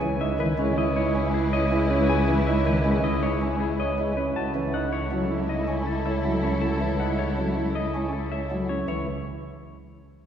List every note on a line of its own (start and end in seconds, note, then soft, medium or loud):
0.00 4.24 C#2 medium
0.00 0.16 E3 medium
0.00 0.26 C#4 medium
0.00 4.13 E4 medium
0.00 0.15 E4 soft
0.00 4.13 B4 medium
0.21 0.45 D#4 medium
0.21 0.34 E4 soft
0.21 0.45 E5 medium
0.39 0.54 D#3 loud
0.39 0.53 E4 medium
0.39 0.64 B4 medium
0.58 0.73 G#3 medium
0.58 0.83 C#4 medium
0.58 0.72 E4 medium
0.77 1.02 E4 medium
0.77 0.91 E4 medium
0.77 1.02 D#5 medium
0.96 1.21 D#4 medium
0.96 1.10 E4 medium
0.96 1.21 C#5 medium
1.15 1.29 C#4 medium
1.15 1.40 E4 medium
1.15 1.29 E4 medium
1.34 1.47 E4 medium
1.34 1.59 G#4 medium
1.53 1.66 E4 medium
1.53 1.77 C#5 medium
1.53 1.77 D#5 medium
1.72 1.86 G#3 medium
1.72 1.96 E4 medium
1.72 1.85 E4 medium
1.91 2.15 C#4 medium
1.91 2.04 E4 medium
1.91 2.15 B4 medium
2.09 2.23 E4 medium
2.09 2.34 G#4 medium
2.09 2.34 G#5 medium
2.28 2.42 E3 medium
2.28 2.53 C#4 medium
2.28 2.41 E4 medium
2.47 2.72 D#4 medium
2.47 2.61 E4 medium
2.47 2.72 E5 medium
2.66 2.80 D#3 loud
2.66 2.79 E4 medium
2.66 2.91 B4 medium
2.85 2.99 G#3 medium
2.85 3.10 C#4 medium
2.85 2.98 E4 medium
3.04 3.28 E4 medium
3.04 3.17 E4 medium
3.04 3.28 D#5 medium
3.23 3.47 D#4 medium
3.23 3.36 E4 medium
3.23 3.47 C#5 medium
3.42 3.56 C#4 medium
3.42 3.66 E4 medium
3.42 3.55 E4 medium
3.60 3.74 E4 soft
3.60 3.85 G#4 medium
3.79 3.93 E4 soft
3.79 4.04 C#5 medium
3.79 4.04 D#5 medium
3.98 4.13 G#3 medium
3.98 4.11 E4 soft
3.98 4.23 E4 medium
4.17 4.42 C#4 medium
4.17 4.42 B4 medium
4.36 8.77 C#2 medium
4.36 8.66 E4 medium
4.36 4.49 E4 soft
4.36 4.61 F#4 medium
4.36 8.66 A4 medium
4.36 4.61 A5 medium
4.55 4.69 E3 medium
4.55 4.79 C#4 medium
4.55 4.68 E4 soft
4.74 4.98 D#4 medium
4.74 4.87 E4 soft
4.74 4.98 F#5 medium
4.92 5.06 E4 soft
4.92 5.17 C#5 medium
5.11 5.26 F#3 soft
5.11 5.36 C#4 medium
5.11 5.25 E4 soft
5.30 5.44 E4 soft
5.30 5.55 E4 medium
5.49 5.74 D#4 medium
5.49 5.62 E4 medium
5.49 5.74 D#5 medium
5.68 5.82 C#4 soft
5.68 5.81 E4 medium
5.87 6.00 E4 medium
5.87 6.11 A4 soft
6.06 6.19 E4 medium
6.06 6.30 C#5 medium
6.06 6.30 E5 medium
6.24 6.39 F#3 soft
6.24 6.38 E4 medium
6.24 6.49 E4 medium
6.43 6.68 C#4 medium
6.43 6.57 E4 medium
6.43 6.68 C#5 soft
6.61 6.75 E4 medium
6.61 6.87 F#4 soft
6.61 6.87 A5 medium
6.81 6.95 E3 soft
6.81 7.06 C#4 medium
6.81 6.94 E4 medium
7.00 7.25 D#4 medium
7.00 7.13 E4 medium
7.00 7.25 F#5 soft
7.19 7.32 E4 medium
7.19 7.43 C#5 medium
7.38 7.52 F#3 soft
7.38 7.62 C#4 soft
7.38 7.51 E4 soft
7.57 7.70 E4 soft
7.57 7.81 E4 medium
7.75 8.00 D#4 soft
7.75 7.89 E4 soft
7.75 8.00 D#5 medium
7.95 8.09 C#4 soft
7.95 8.08 E4 soft
8.13 8.27 E4 soft
8.13 8.38 A4 soft
8.32 8.46 E4 soft
8.32 8.57 C#5 soft
8.32 8.56 E5 medium
8.51 8.65 F#3 soft
8.51 8.76 E4 medium
8.51 8.65 E4 soft
8.69 8.94 C#4 medium
8.69 8.87 C#5 soft
8.88 9.06 C#2 medium
8.88 9.06 E3 medium
8.88 9.06 E4 medium
8.88 9.06 C#5 medium